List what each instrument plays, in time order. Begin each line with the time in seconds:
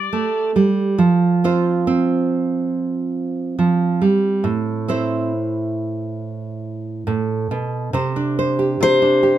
Already playing: nylon-string guitar G3 G4, pedal steel guitar D5
0.13 nylon-string guitar A3
0.56 nylon-string guitar G3
0.98 nylon-string guitar F3
1.44 nylon-string guitar C4 F4 C5
1.87 nylon-string guitar C4
3.59 nylon-string guitar F3
4.02 nylon-string guitar G3
4.44 nylon-string guitar A2
4.88 nylon-string guitar C4 E4 C5
7.07 nylon-string guitar A2
7.51 nylon-string guitar B2
7.93 nylon-string guitar C3 C5
8.16 nylon-string guitar D4
8.39 nylon-string guitar C5
8.59 nylon-string guitar G4
8.81 nylon-string guitar C3, steel-string acoustic guitar C5
9.02 nylon-string guitar D4
9.23 nylon-string guitar G4